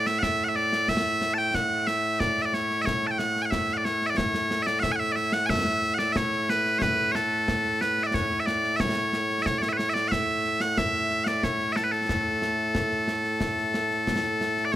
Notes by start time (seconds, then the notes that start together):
Already playing: A2 A3
0.07 E5, snare
0.19 F#5
0.23 E5, concert bass drum, snare
0.44 F#5
0.49 E5
0.56 D5, snare
0.73 snare
0.88 E5, concert bass drum, snare
1.05 snare
1.21 snare
1.34 A5
1.38 G5, snare
1.54 F#5, concert bass drum, snare
1.87 E5, snare
2.20 D5, concert bass drum, snare
2.37 snare
2.42 D5 E5
2.54 C#5, snare
2.71 snare
2.82 C#5 E5
2.87 concert bass drum, snare
3.03 A5, snare
3.11 G5
3.18 F#5, snare
3.36 snare
3.42 F#5 G#5
3.51 E5, concert bass drum, snare
3.69 snare
3.73 F#5
3.77 D5
3.84 C#5, snare
4.02 snare
4.06 D5 E5
4.17 C#5, concert bass drum, snare
4.34 snare
4.51 snare
4.62 E5
4.67 D5, snare
4.80 E5 F#5, concert bass drum, snare
4.92 F#5 G#5
5.00 E5
5.12 D5 E5
5.16 snare
5.32 F#5, snare
5.46 E5 G#5, concert bass drum, snare
5.82 snare
5.94 F#5
5.99 D5, snare
6.12 E5, concert bass drum, snare
6.17 C#5
6.32 snare
6.49 B4, snare
6.66 snare
6.79 B4 C#5, concert bass drum, snare
7.12 A4 C#5, snare
7.48 concert bass drum, snare
7.65 snare
7.81 B4, snare
7.98 snare
8.03 D5 E5
8.14 C#5, concert bass drum, snare
8.31 snare
8.40 E5
8.46 D5, snare
8.64 snare
8.76 C#5 E5, concert bass drum, snare
8.97 snare
9.13 snare
9.30 snare
9.42 C#5 E5, concert bass drum, snare
9.58 C#5 D5
9.63 snare
9.69 E5
9.73 B4
9.77 C#5, snare
9.89 E5
9.94 D5, snare
10.08 E5 F#5, concert bass drum, snare
10.45 snare
10.60 F#5, snare
10.78 E5, concert bass drum, snare
11.10 snare
11.24 D5 F#5, snare
11.43 C#5, concert bass drum, snare
11.60 snare
11.72 A4 E5, snare
11.84 B4
11.92 A4, snare
12.09 concert bass drum, snare
12.42 snare
12.75 concert bass drum, snare
12.91 snare
13.08 snare
13.24 snare
13.40 concert bass drum, snare
13.58 snare
13.74 snare
13.91 snare
14.07 concert bass drum, snare
14.24 snare
14.41 snare
14.57 snare
14.65 D5
14.72 C#5